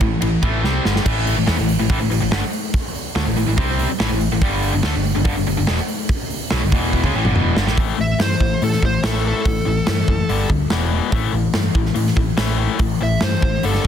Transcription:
0.01 picked electric bass A1, overdriven electric guitar A2 E3, kick, ride
0.22 picked electric bass A1, overdriven electric guitar A2 E3, ride
0.42 picked electric bass A1, overdriven electric guitar A2 E3 A3, kick, ride
0.64 picked electric bass C2, overdriven electric guitar C3 G3 C4, snare
0.85 picked electric bass G1, overdriven electric guitar G2 D3 G3, snare
0.96 snare
1.05 picked electric bass A1, overdriven electric guitar A2 E3 A3, kick, crash
1.27 open hi-hat
1.37 picked electric bass A1, overdriven electric guitar A2 E3
1.46 picked electric bass E2, overdriven electric guitar E3 B3, snare, open hi-hat
1.57 picked electric bass A1, overdriven electric guitar A2 E3
1.69 open hi-hat
1.79 picked electric bass A1, overdriven electric guitar A2 E3
1.89 picked electric bass A1, overdriven electric guitar A2 E3, kick, open hi-hat
2.00 picked electric bass A1, overdriven electric guitar A2 E3
2.10 picked electric bass A1, overdriven electric guitar A2 E3, open hi-hat
2.20 picked electric bass A1, overdriven electric guitar A2 E3
2.31 picked electric bass G1, overdriven electric guitar G2 D3, snare, open hi-hat
2.53 open hi-hat
2.74 kick, open hi-hat
2.95 open hi-hat
3.15 picked electric bass D2, overdriven electric guitar D3 A3, snare, open hi-hat
3.26 picked electric bass A1, overdriven electric guitar A2 E3
3.37 picked electric bass A1, overdriven electric guitar A2 E3, open hi-hat
3.47 picked electric bass A1, overdriven electric guitar A2 E3
3.58 picked electric bass C2, overdriven electric guitar C3 G3 C4, kick, open hi-hat
3.79 open hi-hat
3.90 muted distorted electric guitar stroke, muted overdriven electric guitar stroke
4.00 picked electric bass A1, overdriven electric guitar A2 E3, snare, open hi-hat
4.11 picked electric bass A1, overdriven electric guitar A2 E3
4.21 open hi-hat
4.31 picked electric bass A1, overdriven electric guitar A2 E3
4.42 picked electric bass G1, overdriven electric guitar G2 D3 G3, kick, open hi-hat
4.63 open hi-hat
4.73 picked electric bass G1, overdriven electric guitar G2 D3
4.83 picked electric bass D2, overdriven electric guitar D3 A3, snare, open hi-hat
4.94 picked electric bass G1, overdriven electric guitar G2 D3, snare
5.04 open hi-hat
5.15 picked electric bass G1, overdriven electric guitar G2 D3
5.25 picked electric bass G1, overdriven electric guitar G2 D3, kick, open hi-hat
5.36 picked electric bass G1, overdriven electric guitar G2 D3
5.46 picked electric bass G1, overdriven electric guitar G2 D3, open hi-hat
5.57 picked electric bass G1, overdriven electric guitar G2 D3
5.67 picked electric bass E1, overdriven electric guitar E2 B2, snare, open hi-hat
5.88 open hi-hat
6.09 kick, open hi-hat
6.30 open hi-hat
6.50 picked electric bass B1, overdriven electric guitar B2 F#3, snare, open hi-hat
6.63 picked electric bass G1, overdriven electric guitar G2 D3
6.72 picked electric bass E1, overdriven electric guitar E2 B2 E3, kick, open hi-hat
6.93 kick
7.03 picked electric bass C#2, overdriven electric guitar C#3 G#3, kick
7.14 picked electric bass A1, overdriven electric guitar A2 E3
7.25 picked electric bass G1, overdriven electric guitar G2 D3, mid tom
7.35 picked electric bass E1, overdriven electric guitar E2 B2 E3, mid tom
7.56 picked electric bass G1, overdriven electric guitar G2 D3, snare
7.67 picked electric bass A1, overdriven electric guitar A2 E3, snare
7.78 picked electric bass A1, overdriven electric guitar A2 E3 A3, kick, open hi-hat
7.98 picked electric bass A1, overdriven electric guitar A2 E3, lead electric guitar E5
8.19 picked electric bass G2, overdriven electric guitar A2 E3, lead electric guitar C5, snare, open hi-hat
8.40 picked electric bass A1, overdriven electric guitar A2 E3, kick
8.62 picked electric bass A2, overdriven electric guitar A2 E3, lead electric guitar A4, open hi-hat
8.72 snare
8.82 picked electric bass A1, overdriven electric guitar A2 E3, lead electric guitar C5, kick
9.03 picked electric bass A1, overdriven electric guitar A2 E3 A3, snare, open hi-hat
9.07 lead electric guitar A4
9.24 overdriven electric guitar A2 E3 A3
9.28 lead electric guitar A4
9.45 picked electric bass A1, overdriven electric guitar A2 E3, kick, open hi-hat
9.65 picked electric bass A1, overdriven electric guitar A2 E3
9.87 picked electric bass G2, overdriven electric guitar A2 E3, snare, open hi-hat
10.08 picked electric bass F#1, overdriven electric guitar A2 E3, kick
10.29 picked electric bass G1, overdriven electric guitar G2 D3 G3, open hi-hat
10.49 picked electric bass D2, overdriven electric guitar G2 D3, kick
10.70 picked electric bass E1, overdriven electric guitar E2 B2 E3, snare, open hi-hat
10.91 overdriven electric guitar E2 B2 E3
11.11 picked electric bass A1, overdriven electric guitar A2 E3 A3, kick, open hi-hat
11.33 picked electric bass A1, overdriven electric guitar A2 E3
11.54 picked electric bass G2, overdriven electric guitar A2 E3, snare, open hi-hat
11.75 picked electric bass A1, overdriven electric guitar A2 E3, kick
11.86 snare
11.94 overdriven electric guitar A2 E3, picked electric bass A2, open hi-hat
12.07 snare
12.16 picked electric bass A1, overdriven electric guitar A2 E3, kick
12.37 picked electric bass A1, overdriven electric guitar A2 E3 A3, snare, open hi-hat
12.58 overdriven electric guitar A2 E3 A3
12.79 picked electric bass A1, overdriven electric guitar A2 E3, kick, open hi-hat
13.01 picked electric bass A1, overdriven electric guitar A2 E3, lead electric guitar E5
13.21 picked electric bass G2, overdriven electric guitar A2 E3, lead electric guitar C5, snare, open hi-hat
13.42 picked electric bass A1, overdriven electric guitar A2 E3, kick
13.63 picked electric bass G1, overdriven electric guitar G2 D3 G3, lead electric guitar A4, open hi-hat
13.74 snare

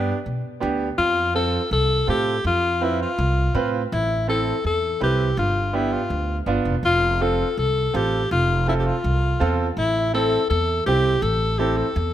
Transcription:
Already playing: upright bass G2, upright piano B3 D4 G4, alto saxophone D4
0.26 upright bass B2
0.60 upright bass D2, upright piano B3 D4 G4
0.98 upright bass F2, alto saxophone F4
1.34 upright piano C4 F4 A4, alto saxophone A4
1.71 upright bass C2, alto saxophone A4
2.07 upright bass A2, upright piano C4 F4 A4, alto saxophone G4
2.44 upright bass F2, alto saxophone F4
2.81 upright piano C4 F4 B4, alto saxophone E4
3.03 alto saxophone F4
3.18 upright bass C2
3.54 upright bass A2, upright piano C4 F4 B4
3.92 upright bass A1, alto saxophone E4
4.28 upright piano C4 E4 A4, alto saxophone A4
4.64 upright bass E2, alto saxophone A4
5.00 upright bass C2, upright piano C4 E4 B4, alto saxophone G4
5.37 upright bass G1, alto saxophone F4
5.73 upright piano B3 D4 G4, alto saxophone E4
5.93 alto saxophone F4
6.10 upright bass D2
6.46 upright bass G1, upright piano B3 D4 F4
6.65 upright bass F1
6.83 upright bass F1, alto saxophone F4
7.21 upright piano C4 F4 A4, alto saxophone A4
7.57 upright bass C2, alto saxophone A4
7.93 upright bass A1, upright piano C4 F4 A4, alto saxophone G4
8.31 upright bass F1, alto saxophone F4
8.67 upright piano C4 F4 A4, alto saxophone E4
8.80 alto saxophone G4
8.86 alto saxophone F4
9.04 upright bass C2
9.40 upright bass E2, upright piano C4 F4 A4
9.77 upright bass A1, alto saxophone E4
10.14 upright piano C4 E4 A4, alto saxophone A4
10.50 upright bass E2, alto saxophone A4
10.86 upright bass C2, upright piano C4 E4 G4, alto saxophone G4
11.22 upright bass A1, alto saxophone A4
11.58 upright piano C4 E4 A4, alto saxophone G4
11.77 alto saxophone A4
11.96 upright bass E2

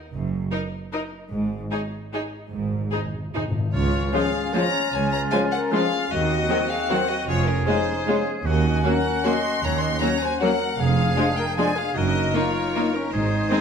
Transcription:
0.12 double bass section F#1, cello section F#2
0.51 viola section D#4, violin section A#4 D#5
0.92 viola section D#4, violin section A#4 D#5
1.31 double bass section G#1, cello section G#2
1.72 viola section D#4, violin section G#4 C#5
2.13 viola section D#4, violin section G#4 C#5
2.52 double bass section G#1, timpani G#2, cello section G#2
2.58 timpani G#2
2.73 timpani G#2
2.82 timpani G#2
2.89 timpani G#2, viola section D#4, violin section G#4 C5
2.97 timpani G#2
3.06 timpani G#2
3.14 timpani G#2
3.22 timpani G#2
3.30 timpani G#2
3.34 timpani G#2, viola section D#4, violin section G#4 C5
3.45 timpani G#2
3.51 timpani G#2
3.59 timpani G#2
3.73 double bass section C#2, cello section C#2, timpani C#3, clarinet C#4, oboe F4, flute F4, violin section C#5
4.13 viola section F3 G#3, french horn section F3 C#4, violin section C#4 F4 F5, flute G#4
4.53 french horn section F3 C#4, viola section F3 G#3, violin section C#4 F4 A#5, flute C#5
4.93 cello section C#2, double bass section C#2, flute C#5, violin section G#5
5.11 flute C#5, violin section A#5
5.31 viola section F3 G#3, french horn section F3 C#4, violin section C#4 F4 G#5, flute C5
5.52 flute A#4, violin section F#5
5.72 viola section F3 G#3, french horn section F3 C#4, violin section C#4 F4 F5, flute G#4
6.10 double bass section D#2, cello section D#2, clarinet C4, flute F#4, oboe F#4, violin section D#5
6.49 viola section D#3 F#3, french horn section F#3 C4, violin section C4 F#4
6.70 flute G#4, violin section F5
6.89 viola section D#3 F#3, french horn section F#3 C4, violin section C4 F#4 F#5, flute C5
7.10 flute F#4, violin section D#5
7.28 double bass section F1, cello section F2, clarinet C#4, flute F4, oboe G#4, violin section C#5
7.47 flute C#4, violin section A#4
7.67 viola section G#3, french horn section G#3 C#4, violin section C#4 F4 C5, flute D#4
8.07 viola section G#3, french horn section G#3 C#4, violin section C#4 F4
8.46 double bass section D#2, cello section D#2, clarinet C#4, oboe F#4, flute F#4, violin section D#5
8.78 violin section G#5
8.84 viola section F#3 A#3, french horn section F#3 C#4, violin section C#4 F#4 F#5, flute A#4
9.24 viola section F#3 A#3, french horn section F#3 C#4, violin section C#4 F#4 C6, flute D#5
9.63 double bass section D#2, cello section D#2, flute C#5, violin section A#5
9.81 flute D#5, violin section C6
10.01 french horn section F#3 C#4, viola section F#3 A#3, violin section C#4 F#4 A#5, flute C#5
10.22 flute C5, violin section G#5
10.40 viola section F#3 A#3, french horn section F#3 C#4, violin section C#4 F#4 F#5, flute A#4
10.78 double bass section F1, cello section F2, clarinet D4, oboe G#4, flute G#4, violin section F5
11.17 viola section F3 G#3, french horn section G#3 D4, violin section D4 G#4
11.38 flute A#4, violin section G5
11.57 viola section F3 G#3, french horn section G#3 D4, violin section D4 G#4 G#5, flute D5
11.76 flute G#4, violin section F5
11.95 double bass section F#1, cello section F#2, clarinet D#4, flute F#4, oboe A#4, violin section D#5
12.34 viola section A#3, french horn section A#3 D#4, violin section D#4 C#5, flute F4
12.76 viola section A#3, french horn section A#3 D#4, violin section D#4
12.95 flute C#4, violin section A#4
13.12 double bass section G#1, cello section G#2, clarinet D#4, flute D#4, oboe G#4, violin section C5
13.51 viola section G#3 C4, french horn section G#3 D#4, violin section D#4 D#5, flute G#4

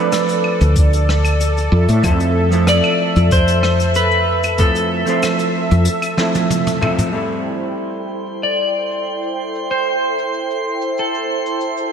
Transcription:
Already playing: hollow-body jazz guitar F3 A3 C4, analog synth pad A4 D5
0.00 hollow-body jazz guitar D4 B4
0.12 cross-stick, closed hi-hat, cabasa
0.28 closed hi-hat, cabasa
0.44 claves
0.61 fretless electric bass D2, closed hi-hat, cabasa
0.76 kick, closed hi-hat, cabasa
0.93 closed hi-hat, cabasa
1.09 cross-stick
1.25 closed hi-hat, cabasa, claves
1.40 closed hi-hat, cabasa
1.57 closed hi-hat, cabasa
1.72 fretless electric bass F2, analog synth pad E5
1.88 fretless electric bass A2, closed hi-hat, cabasa
2.03 fretless electric bass F2, hollow-body jazz guitar F3 A3 C4 E4 A4, kick, closed hi-hat, cabasa, claves
2.20 closed hi-hat, cabasa
2.51 hollow-body jazz guitar F3 A3 C4 E4 A4, closed hi-hat, cabasa
2.67 clean electric guitar D5, cross-stick, closed hi-hat, cabasa
2.84 cabasa, claves
3.16 fretless electric bass F2, closed hi-hat, cabasa
3.31 clean electric guitar C5, kick, closed hi-hat, cabasa
3.48 closed hi-hat, cabasa
3.63 cross-stick, claves
3.80 closed hi-hat, cabasa
3.94 clean electric guitar B4, closed hi-hat, cabasa
4.11 cabasa
4.43 closed hi-hat, cabasa, claves
4.58 hollow-body jazz guitar F3 A3 C4 E4 A4, clean electric guitar A4, kick, closed hi-hat, cabasa
4.75 closed hi-hat, cabasa
5.06 hollow-body jazz guitar F3 A3 C4 E4 C5, closed hi-hat, cabasa
5.22 cross-stick, closed hi-hat, cabasa, claves
5.39 closed hi-hat, cabasa
5.71 fretless electric bass F2, closed hi-hat, cabasa
5.85 closed hi-hat, cabasa
6.02 closed hi-hat, cabasa, claves
6.17 hollow-body jazz guitar F3 A3 C4 E4 A4, cross-stick, high tom
6.35 closed hi-hat, high tom, cabasa
6.50 closed hi-hat, mid tom, cabasa
6.67 closed hi-hat, mid tom, cabasa
6.81 hollow-body jazz guitar F3 A3 C4 E4 A4, mid tom, claves
6.98 closed hi-hat, mid tom, cabasa
7.12 hollow-body jazz guitar G3 A3 C4 E4 A4, analog synth pad E4 A4 C5 G5, synth texture C6, cabasa
7.32 cabasa
7.63 cabasa
7.78 cabasa
7.95 cabasa
8.26 cabasa
8.43 clean electric guitar D5, cabasa
8.58 cabasa
8.91 cabasa
9.06 cabasa
9.23 cabasa
9.55 cabasa
9.70 clean electric guitar C5, cabasa
9.87 cabasa
10.19 cabasa
10.34 cabasa
10.51 cabasa
10.82 cabasa
10.98 clean electric guitar A4, cabasa
11.15 cabasa
11.46 cabasa
11.61 cabasa
11.77 cabasa

